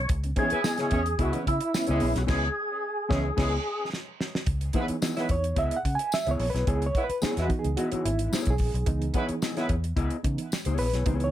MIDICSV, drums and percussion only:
0, 0, Header, 1, 2, 480
1, 0, Start_track
1, 0, Key_signature, 4, "minor"
1, 0, Tempo, 548948
1, 85, Time_signature, 4, 2, 24, 8
1, 9892, End_track
2, 0, Start_track
2, 0, Title_t, "Drums"
2, 79, Note_on_c, 9, 42, 99
2, 84, Note_on_c, 9, 36, 122
2, 167, Note_off_c, 9, 42, 0
2, 172, Note_off_c, 9, 36, 0
2, 206, Note_on_c, 9, 42, 50
2, 293, Note_off_c, 9, 42, 0
2, 317, Note_on_c, 9, 42, 74
2, 321, Note_on_c, 9, 36, 87
2, 404, Note_off_c, 9, 42, 0
2, 409, Note_off_c, 9, 36, 0
2, 438, Note_on_c, 9, 42, 52
2, 526, Note_off_c, 9, 42, 0
2, 561, Note_on_c, 9, 38, 127
2, 561, Note_on_c, 9, 54, 98
2, 649, Note_off_c, 9, 38, 0
2, 649, Note_off_c, 9, 54, 0
2, 678, Note_on_c, 9, 42, 49
2, 684, Note_on_c, 9, 38, 37
2, 766, Note_off_c, 9, 42, 0
2, 771, Note_off_c, 9, 38, 0
2, 793, Note_on_c, 9, 42, 75
2, 803, Note_on_c, 9, 36, 90
2, 881, Note_off_c, 9, 42, 0
2, 890, Note_off_c, 9, 36, 0
2, 925, Note_on_c, 9, 42, 50
2, 1013, Note_off_c, 9, 42, 0
2, 1039, Note_on_c, 9, 42, 88
2, 1041, Note_on_c, 9, 36, 100
2, 1127, Note_off_c, 9, 42, 0
2, 1128, Note_off_c, 9, 36, 0
2, 1163, Note_on_c, 9, 42, 59
2, 1251, Note_off_c, 9, 42, 0
2, 1287, Note_on_c, 9, 36, 87
2, 1288, Note_on_c, 9, 42, 97
2, 1374, Note_off_c, 9, 36, 0
2, 1375, Note_off_c, 9, 42, 0
2, 1404, Note_on_c, 9, 42, 64
2, 1491, Note_off_c, 9, 42, 0
2, 1524, Note_on_c, 9, 54, 123
2, 1526, Note_on_c, 9, 38, 103
2, 1612, Note_off_c, 9, 54, 0
2, 1613, Note_off_c, 9, 38, 0
2, 1632, Note_on_c, 9, 42, 56
2, 1720, Note_off_c, 9, 42, 0
2, 1750, Note_on_c, 9, 46, 63
2, 1838, Note_off_c, 9, 46, 0
2, 1885, Note_on_c, 9, 38, 40
2, 1887, Note_on_c, 9, 42, 62
2, 1972, Note_off_c, 9, 38, 0
2, 1974, Note_off_c, 9, 42, 0
2, 1995, Note_on_c, 9, 49, 93
2, 2001, Note_on_c, 9, 36, 122
2, 2002, Note_on_c, 9, 38, 108
2, 2082, Note_off_c, 9, 49, 0
2, 2089, Note_off_c, 9, 36, 0
2, 2089, Note_off_c, 9, 38, 0
2, 2716, Note_on_c, 9, 36, 117
2, 2720, Note_on_c, 9, 38, 113
2, 2804, Note_off_c, 9, 36, 0
2, 2808, Note_off_c, 9, 38, 0
2, 2951, Note_on_c, 9, 49, 94
2, 2955, Note_on_c, 9, 36, 126
2, 2958, Note_on_c, 9, 38, 117
2, 3039, Note_off_c, 9, 49, 0
2, 3042, Note_off_c, 9, 36, 0
2, 3046, Note_off_c, 9, 38, 0
2, 3441, Note_on_c, 9, 38, 61
2, 3528, Note_off_c, 9, 38, 0
2, 3678, Note_on_c, 9, 38, 80
2, 3765, Note_off_c, 9, 38, 0
2, 3805, Note_on_c, 9, 38, 98
2, 3893, Note_off_c, 9, 38, 0
2, 3904, Note_on_c, 9, 42, 84
2, 3909, Note_on_c, 9, 36, 119
2, 3992, Note_off_c, 9, 42, 0
2, 3996, Note_off_c, 9, 36, 0
2, 4031, Note_on_c, 9, 42, 49
2, 4119, Note_off_c, 9, 42, 0
2, 4138, Note_on_c, 9, 42, 69
2, 4146, Note_on_c, 9, 36, 87
2, 4225, Note_off_c, 9, 42, 0
2, 4234, Note_off_c, 9, 36, 0
2, 4270, Note_on_c, 9, 42, 57
2, 4357, Note_off_c, 9, 42, 0
2, 4389, Note_on_c, 9, 54, 107
2, 4394, Note_on_c, 9, 38, 111
2, 4477, Note_off_c, 9, 54, 0
2, 4482, Note_off_c, 9, 38, 0
2, 4520, Note_on_c, 9, 42, 50
2, 4525, Note_on_c, 9, 38, 33
2, 4607, Note_off_c, 9, 42, 0
2, 4613, Note_off_c, 9, 38, 0
2, 4626, Note_on_c, 9, 42, 66
2, 4632, Note_on_c, 9, 36, 82
2, 4714, Note_off_c, 9, 42, 0
2, 4719, Note_off_c, 9, 36, 0
2, 4756, Note_on_c, 9, 42, 50
2, 4844, Note_off_c, 9, 42, 0
2, 4866, Note_on_c, 9, 42, 98
2, 4867, Note_on_c, 9, 36, 88
2, 4953, Note_off_c, 9, 42, 0
2, 4955, Note_off_c, 9, 36, 0
2, 4995, Note_on_c, 9, 42, 62
2, 5082, Note_off_c, 9, 42, 0
2, 5116, Note_on_c, 9, 36, 93
2, 5117, Note_on_c, 9, 42, 97
2, 5204, Note_off_c, 9, 36, 0
2, 5204, Note_off_c, 9, 42, 0
2, 5240, Note_on_c, 9, 42, 64
2, 5327, Note_off_c, 9, 42, 0
2, 5351, Note_on_c, 9, 54, 112
2, 5366, Note_on_c, 9, 38, 100
2, 5438, Note_off_c, 9, 54, 0
2, 5453, Note_off_c, 9, 38, 0
2, 5478, Note_on_c, 9, 42, 54
2, 5566, Note_off_c, 9, 42, 0
2, 5593, Note_on_c, 9, 46, 72
2, 5680, Note_off_c, 9, 46, 0
2, 5732, Note_on_c, 9, 38, 37
2, 5734, Note_on_c, 9, 42, 57
2, 5820, Note_off_c, 9, 38, 0
2, 5822, Note_off_c, 9, 42, 0
2, 5834, Note_on_c, 9, 42, 83
2, 5836, Note_on_c, 9, 36, 107
2, 5922, Note_off_c, 9, 42, 0
2, 5924, Note_off_c, 9, 36, 0
2, 5962, Note_on_c, 9, 42, 51
2, 6050, Note_off_c, 9, 42, 0
2, 6076, Note_on_c, 9, 36, 91
2, 6076, Note_on_c, 9, 42, 72
2, 6163, Note_off_c, 9, 36, 0
2, 6163, Note_off_c, 9, 42, 0
2, 6205, Note_on_c, 9, 42, 54
2, 6292, Note_off_c, 9, 42, 0
2, 6311, Note_on_c, 9, 54, 101
2, 6324, Note_on_c, 9, 38, 121
2, 6398, Note_off_c, 9, 54, 0
2, 6412, Note_off_c, 9, 38, 0
2, 6444, Note_on_c, 9, 42, 56
2, 6450, Note_on_c, 9, 38, 36
2, 6531, Note_off_c, 9, 42, 0
2, 6537, Note_off_c, 9, 38, 0
2, 6556, Note_on_c, 9, 42, 65
2, 6558, Note_on_c, 9, 36, 88
2, 6643, Note_off_c, 9, 42, 0
2, 6645, Note_off_c, 9, 36, 0
2, 6684, Note_on_c, 9, 42, 47
2, 6772, Note_off_c, 9, 42, 0
2, 6796, Note_on_c, 9, 42, 94
2, 6884, Note_off_c, 9, 42, 0
2, 6922, Note_on_c, 9, 42, 57
2, 7009, Note_off_c, 9, 42, 0
2, 7044, Note_on_c, 9, 42, 96
2, 7131, Note_off_c, 9, 42, 0
2, 7161, Note_on_c, 9, 42, 57
2, 7249, Note_off_c, 9, 42, 0
2, 7281, Note_on_c, 9, 54, 119
2, 7288, Note_on_c, 9, 38, 106
2, 7368, Note_off_c, 9, 54, 0
2, 7375, Note_off_c, 9, 38, 0
2, 7392, Note_on_c, 9, 42, 62
2, 7406, Note_on_c, 9, 36, 98
2, 7480, Note_off_c, 9, 42, 0
2, 7493, Note_off_c, 9, 36, 0
2, 7505, Note_on_c, 9, 46, 64
2, 7518, Note_on_c, 9, 36, 92
2, 7592, Note_off_c, 9, 46, 0
2, 7606, Note_off_c, 9, 36, 0
2, 7653, Note_on_c, 9, 42, 52
2, 7740, Note_off_c, 9, 42, 0
2, 7751, Note_on_c, 9, 42, 95
2, 7757, Note_on_c, 9, 36, 112
2, 7838, Note_off_c, 9, 42, 0
2, 7845, Note_off_c, 9, 36, 0
2, 7884, Note_on_c, 9, 42, 52
2, 7971, Note_off_c, 9, 42, 0
2, 7990, Note_on_c, 9, 42, 74
2, 7995, Note_on_c, 9, 36, 91
2, 8077, Note_off_c, 9, 42, 0
2, 8083, Note_off_c, 9, 36, 0
2, 8120, Note_on_c, 9, 42, 49
2, 8207, Note_off_c, 9, 42, 0
2, 8237, Note_on_c, 9, 54, 102
2, 8241, Note_on_c, 9, 38, 113
2, 8325, Note_off_c, 9, 54, 0
2, 8328, Note_off_c, 9, 38, 0
2, 8365, Note_on_c, 9, 42, 51
2, 8371, Note_on_c, 9, 38, 33
2, 8452, Note_off_c, 9, 42, 0
2, 8458, Note_off_c, 9, 38, 0
2, 8474, Note_on_c, 9, 42, 73
2, 8478, Note_on_c, 9, 36, 84
2, 8561, Note_off_c, 9, 42, 0
2, 8565, Note_off_c, 9, 36, 0
2, 8603, Note_on_c, 9, 42, 49
2, 8690, Note_off_c, 9, 42, 0
2, 8714, Note_on_c, 9, 36, 102
2, 8716, Note_on_c, 9, 42, 99
2, 8802, Note_off_c, 9, 36, 0
2, 8804, Note_off_c, 9, 42, 0
2, 8836, Note_on_c, 9, 42, 51
2, 8923, Note_off_c, 9, 42, 0
2, 8958, Note_on_c, 9, 42, 93
2, 8959, Note_on_c, 9, 36, 102
2, 9045, Note_off_c, 9, 42, 0
2, 9046, Note_off_c, 9, 36, 0
2, 9079, Note_on_c, 9, 42, 60
2, 9166, Note_off_c, 9, 42, 0
2, 9198, Note_on_c, 9, 54, 115
2, 9208, Note_on_c, 9, 38, 102
2, 9286, Note_off_c, 9, 54, 0
2, 9295, Note_off_c, 9, 38, 0
2, 9313, Note_on_c, 9, 42, 58
2, 9400, Note_off_c, 9, 42, 0
2, 9424, Note_on_c, 9, 46, 67
2, 9512, Note_off_c, 9, 46, 0
2, 9559, Note_on_c, 9, 38, 36
2, 9561, Note_on_c, 9, 42, 53
2, 9647, Note_off_c, 9, 38, 0
2, 9649, Note_off_c, 9, 42, 0
2, 9669, Note_on_c, 9, 42, 92
2, 9675, Note_on_c, 9, 36, 109
2, 9756, Note_off_c, 9, 42, 0
2, 9762, Note_off_c, 9, 36, 0
2, 9794, Note_on_c, 9, 42, 45
2, 9882, Note_off_c, 9, 42, 0
2, 9892, End_track
0, 0, End_of_file